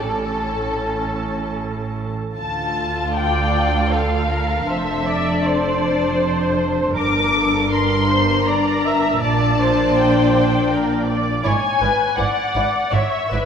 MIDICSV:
0, 0, Header, 1, 6, 480
1, 0, Start_track
1, 0, Key_signature, -1, "minor"
1, 0, Tempo, 778210
1, 8, Time_signature, 3, 2, 24, 8
1, 3368, Tempo, 750939
1, 6248, Tempo, 739827
1, 8168, Tempo, 809717
1, 8480, End_track
2, 0, Start_track
2, 0, Title_t, "Violin section"
2, 0, Program_c, 0, 48
2, 9, Note_on_c, 0, 81, 37
2, 1337, Note_off_c, 0, 81, 0
2, 1464, Note_on_c, 0, 81, 74
2, 1918, Note_off_c, 0, 81, 0
2, 1947, Note_on_c, 0, 79, 73
2, 2421, Note_off_c, 0, 79, 0
2, 2423, Note_on_c, 0, 77, 68
2, 2895, Note_off_c, 0, 77, 0
2, 2898, Note_on_c, 0, 76, 73
2, 3370, Note_on_c, 0, 74, 64
2, 3371, Note_off_c, 0, 76, 0
2, 4091, Note_off_c, 0, 74, 0
2, 4331, Note_on_c, 0, 86, 82
2, 4785, Note_off_c, 0, 86, 0
2, 4814, Note_on_c, 0, 84, 79
2, 5283, Note_on_c, 0, 82, 78
2, 5290, Note_off_c, 0, 84, 0
2, 5765, Note_on_c, 0, 81, 74
2, 5767, Note_off_c, 0, 82, 0
2, 6237, Note_off_c, 0, 81, 0
2, 6256, Note_on_c, 0, 79, 68
2, 6967, Note_off_c, 0, 79, 0
2, 7213, Note_on_c, 0, 80, 78
2, 7662, Note_off_c, 0, 80, 0
2, 7680, Note_on_c, 0, 78, 73
2, 8166, Note_off_c, 0, 78, 0
2, 8177, Note_on_c, 0, 76, 69
2, 8480, Note_off_c, 0, 76, 0
2, 8480, End_track
3, 0, Start_track
3, 0, Title_t, "Viola section"
3, 0, Program_c, 1, 48
3, 2, Note_on_c, 1, 61, 36
3, 2, Note_on_c, 1, 69, 40
3, 1333, Note_off_c, 1, 61, 0
3, 1333, Note_off_c, 1, 69, 0
3, 1939, Note_on_c, 1, 74, 61
3, 2393, Note_off_c, 1, 74, 0
3, 2410, Note_on_c, 1, 69, 50
3, 2643, Note_on_c, 1, 70, 49
3, 2652, Note_off_c, 1, 69, 0
3, 2881, Note_off_c, 1, 70, 0
3, 2885, Note_on_c, 1, 72, 50
3, 3125, Note_on_c, 1, 74, 53
3, 3126, Note_off_c, 1, 72, 0
3, 3365, Note_off_c, 1, 74, 0
3, 3365, Note_on_c, 1, 72, 70
3, 4324, Note_on_c, 1, 70, 53
3, 4327, Note_off_c, 1, 72, 0
3, 4562, Note_off_c, 1, 70, 0
3, 4577, Note_on_c, 1, 69, 57
3, 4812, Note_on_c, 1, 70, 60
3, 4813, Note_off_c, 1, 69, 0
3, 5044, Note_off_c, 1, 70, 0
3, 5051, Note_on_c, 1, 72, 60
3, 5288, Note_on_c, 1, 74, 55
3, 5289, Note_off_c, 1, 72, 0
3, 5529, Note_off_c, 1, 74, 0
3, 5542, Note_on_c, 1, 76, 61
3, 5776, Note_off_c, 1, 76, 0
3, 5778, Note_on_c, 1, 74, 59
3, 6009, Note_off_c, 1, 74, 0
3, 6019, Note_on_c, 1, 72, 64
3, 6729, Note_off_c, 1, 72, 0
3, 6741, Note_on_c, 1, 70, 52
3, 6972, Note_off_c, 1, 70, 0
3, 6974, Note_on_c, 1, 74, 57
3, 7204, Note_off_c, 1, 74, 0
3, 7206, Note_on_c, 1, 73, 57
3, 7445, Note_on_c, 1, 71, 54
3, 7446, Note_off_c, 1, 73, 0
3, 7683, Note_off_c, 1, 71, 0
3, 7690, Note_on_c, 1, 74, 62
3, 8167, Note_on_c, 1, 73, 54
3, 8170, Note_off_c, 1, 74, 0
3, 8400, Note_on_c, 1, 71, 52
3, 8406, Note_off_c, 1, 73, 0
3, 8480, Note_off_c, 1, 71, 0
3, 8480, End_track
4, 0, Start_track
4, 0, Title_t, "Violin section"
4, 0, Program_c, 2, 48
4, 0, Note_on_c, 2, 69, 59
4, 956, Note_off_c, 2, 69, 0
4, 1449, Note_on_c, 2, 65, 53
4, 1450, Note_on_c, 2, 69, 52
4, 2862, Note_off_c, 2, 65, 0
4, 2888, Note_on_c, 2, 62, 52
4, 4298, Note_off_c, 2, 69, 0
4, 4329, Note_on_c, 2, 70, 61
4, 5741, Note_off_c, 2, 62, 0
4, 5744, Note_off_c, 2, 70, 0
4, 5766, Note_on_c, 2, 74, 66
4, 5767, Note_on_c, 2, 62, 64
4, 7176, Note_off_c, 2, 62, 0
4, 7176, Note_off_c, 2, 74, 0
4, 7203, Note_on_c, 2, 64, 52
4, 7207, Note_on_c, 2, 74, 55
4, 7255, Note_off_c, 2, 64, 0
4, 7259, Note_off_c, 2, 74, 0
4, 7453, Note_on_c, 2, 64, 47
4, 7455, Note_on_c, 2, 74, 43
4, 7505, Note_off_c, 2, 64, 0
4, 7507, Note_off_c, 2, 74, 0
4, 7682, Note_on_c, 2, 74, 46
4, 7683, Note_on_c, 2, 64, 44
4, 7733, Note_off_c, 2, 74, 0
4, 7735, Note_off_c, 2, 64, 0
4, 7931, Note_on_c, 2, 64, 47
4, 7934, Note_on_c, 2, 74, 46
4, 7982, Note_off_c, 2, 64, 0
4, 7986, Note_off_c, 2, 74, 0
4, 8159, Note_on_c, 2, 74, 48
4, 8163, Note_on_c, 2, 64, 45
4, 8207, Note_off_c, 2, 74, 0
4, 8211, Note_off_c, 2, 64, 0
4, 8407, Note_on_c, 2, 74, 42
4, 8408, Note_on_c, 2, 64, 44
4, 8455, Note_off_c, 2, 74, 0
4, 8456, Note_off_c, 2, 64, 0
4, 8480, End_track
5, 0, Start_track
5, 0, Title_t, "Cello section"
5, 0, Program_c, 3, 48
5, 7, Note_on_c, 3, 45, 42
5, 1311, Note_off_c, 3, 45, 0
5, 1457, Note_on_c, 3, 38, 54
5, 2867, Note_off_c, 3, 38, 0
5, 2888, Note_on_c, 3, 41, 55
5, 4301, Note_off_c, 3, 41, 0
5, 4332, Note_on_c, 3, 43, 55
5, 5771, Note_off_c, 3, 43, 0
5, 5774, Note_on_c, 3, 46, 62
5, 7180, Note_off_c, 3, 46, 0
5, 7211, Note_on_c, 3, 44, 59
5, 7263, Note_off_c, 3, 44, 0
5, 7450, Note_on_c, 3, 44, 54
5, 7501, Note_off_c, 3, 44, 0
5, 7684, Note_on_c, 3, 44, 54
5, 7736, Note_off_c, 3, 44, 0
5, 7925, Note_on_c, 3, 44, 48
5, 7977, Note_off_c, 3, 44, 0
5, 8169, Note_on_c, 3, 44, 49
5, 8217, Note_off_c, 3, 44, 0
5, 8405, Note_on_c, 3, 44, 47
5, 8453, Note_off_c, 3, 44, 0
5, 8480, End_track
6, 0, Start_track
6, 0, Title_t, "Double bass section"
6, 0, Program_c, 4, 48
6, 8, Note_on_c, 4, 33, 46
6, 1311, Note_off_c, 4, 33, 0
6, 1456, Note_on_c, 4, 38, 60
6, 2866, Note_off_c, 4, 38, 0
6, 2894, Note_on_c, 4, 29, 57
6, 4304, Note_off_c, 4, 29, 0
6, 4328, Note_on_c, 4, 31, 62
6, 5767, Note_on_c, 4, 34, 66
6, 5769, Note_off_c, 4, 31, 0
6, 7177, Note_off_c, 4, 34, 0
6, 7206, Note_on_c, 4, 32, 61
6, 7257, Note_off_c, 4, 32, 0
6, 7450, Note_on_c, 4, 32, 53
6, 7502, Note_off_c, 4, 32, 0
6, 7683, Note_on_c, 4, 32, 54
6, 7735, Note_off_c, 4, 32, 0
6, 7932, Note_on_c, 4, 32, 52
6, 7983, Note_off_c, 4, 32, 0
6, 8172, Note_on_c, 4, 32, 53
6, 8219, Note_off_c, 4, 32, 0
6, 8407, Note_on_c, 4, 32, 51
6, 8454, Note_off_c, 4, 32, 0
6, 8480, End_track
0, 0, End_of_file